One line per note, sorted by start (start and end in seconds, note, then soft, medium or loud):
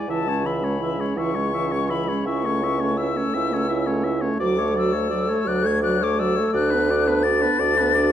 0.00 0.11 G#5 medium
0.08 1.04 C#2 medium
0.08 0.29 E3 medium
0.08 0.28 E4 medium
0.08 0.30 E5 medium
0.08 0.47 A5 loud
0.27 0.46 G#3 medium
0.27 0.47 C#4 medium
0.27 0.48 C#5 medium
0.44 0.64 E3 medium
0.44 0.63 E4 medium
0.44 0.66 E5 medium
0.44 1.17 B5 medium
0.62 0.80 G#3 medium
0.62 0.79 C#4 medium
0.62 0.82 C#5 medium
0.79 1.00 E3 medium
0.79 0.98 E4 medium
0.79 1.02 E5 medium
0.97 1.20 G#3 medium
0.97 1.17 C#4 medium
1.01 1.19 C#5 medium
1.15 2.13 C#2 medium
1.15 1.37 E3 medium
1.15 1.36 E4 medium
1.15 1.37 E5 medium
1.15 1.92 C#6 loud
1.34 1.54 G#3 medium
1.34 1.53 C#4 medium
1.34 1.53 C#5 medium
1.53 1.75 E3 medium
1.53 1.73 E4 medium
1.53 1.73 E5 medium
1.71 1.92 G#3 medium
1.71 1.91 C#4 medium
1.71 1.91 C#5 medium
1.90 2.09 E3 medium
1.90 2.10 E4 medium
1.90 2.10 E5 medium
1.90 2.27 B5 loud
2.08 2.26 G#3 medium
2.08 2.25 C#4 medium
2.08 2.26 C#5 medium
2.25 3.21 C#2 medium
2.25 2.46 C#4 medium
2.25 2.46 E4 medium
2.25 2.47 E5 medium
2.25 2.99 C#6 loud
2.44 2.64 A3 medium
2.44 2.64 C#4 medium
2.44 2.65 C#5 medium
2.62 2.81 C#4 medium
2.62 2.82 E4 medium
2.62 2.82 E5 medium
2.80 2.98 A3 medium
2.80 2.98 C#4 medium
2.80 2.98 C#5 medium
2.97 3.18 C#4 medium
2.97 3.19 E4 medium
2.97 3.19 E5 medium
2.97 4.13 E6 loud
3.16 3.37 A3 medium
3.16 3.36 C#4 medium
3.16 3.35 C#5 medium
3.33 4.28 C#2 medium
3.33 3.53 C#4 medium
3.33 3.54 E4 medium
3.33 3.55 E5 medium
3.52 3.68 A3 medium
3.52 3.67 C#4 medium
3.52 3.69 C#5 medium
3.68 3.89 C#4 medium
3.68 3.89 E4 medium
3.68 3.88 E5 medium
3.87 4.06 A3 medium
3.87 4.06 C#4 medium
3.87 4.06 C#5 medium
4.04 4.24 C#4 medium
4.04 4.24 E4 medium
4.04 4.23 E5 medium
4.22 4.41 A3 medium
4.22 4.39 C#4 medium
4.22 4.39 C#5 medium
4.40 5.35 D2 medium
4.40 4.61 F#3 medium
4.40 4.59 F#4 medium
4.40 4.60 D5 medium
4.40 4.75 D6 loud
4.57 4.77 A3 medium
4.57 4.75 A4 medium
4.57 4.78 C#5 medium
4.74 4.96 F#3 medium
4.74 4.94 F#4 medium
4.74 4.94 D5 medium
4.78 5.49 E6 loud
4.93 5.11 A3 medium
4.93 5.08 A4 medium
4.93 5.09 C#5 medium
5.09 5.31 F#3 medium
5.09 5.28 F#4 medium
5.09 5.30 D5 medium
5.27 5.48 A3 medium
5.27 5.46 A4 medium
5.27 5.50 C#5 medium
5.45 6.42 D2 loud
5.45 5.67 F#3 medium
5.45 5.64 F#4 medium
5.45 5.65 D5 medium
5.45 5.68 F#6 loud
5.63 5.83 A3 medium
5.63 5.80 A4 medium
5.63 5.82 C#5 medium
5.63 5.82 G#6 loud
5.81 6.04 F#3 medium
5.81 6.00 F#4 medium
5.81 6.02 D5 medium
5.81 6.05 F#6 loud
5.98 6.18 A4 medium
5.98 6.20 C#5 medium
6.02 6.22 A3 medium
6.02 6.21 D6 loud
6.16 6.36 F#4 medium
6.16 6.37 D5 medium
6.16 6.54 E6 loud
6.21 6.41 F#3 medium
6.35 6.53 A4 medium
6.35 6.52 C#5 medium
6.39 6.56 A3 medium
6.52 7.47 D2 loud
6.52 6.73 F#4 medium
6.52 6.72 D5 medium
6.52 7.25 F#6 loud
6.58 6.76 D4 medium
6.70 6.92 D4 medium
6.70 6.92 B4 medium
6.74 6.92 B3 medium
6.90 7.10 D4 medium
6.90 7.09 F#4 medium
6.90 7.09 D5 medium
7.07 7.25 B3 medium
7.07 7.24 D4 medium
7.07 7.24 B4 medium
7.23 7.45 D4 medium
7.23 7.43 F#4 medium
7.23 7.43 D5 medium
7.23 8.12 A6 loud
7.42 7.63 B3 medium
7.42 7.60 D4 medium
7.42 7.61 B4 medium
7.59 8.12 D2 loud
7.59 7.83 D4 medium
7.59 7.77 F#4 medium
7.59 7.79 D5 medium
7.76 7.94 D4 medium
7.76 7.93 B4 medium
7.81 7.97 B3 medium
7.94 8.12 D4 medium
7.94 8.12 F#4 medium
7.94 8.12 D5 medium